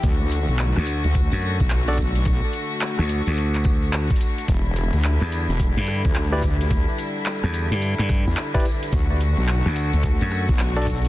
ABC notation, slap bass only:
X:1
M:4/4
L:1/16
Q:"Swing 16ths" 1/4=108
K:Dmix
V:1 name="Slap bass" clef=bass
z4 z D,,2 z2 F,,2 z4 z | z4 z D,,2 D,,6 z3 | z4 z E,,2 z2 G,,2 z4 z | z4 z E,,2 G,,2 G,,2 z4 z |
z4 z D,,2 z2 F,,2 z4 z |]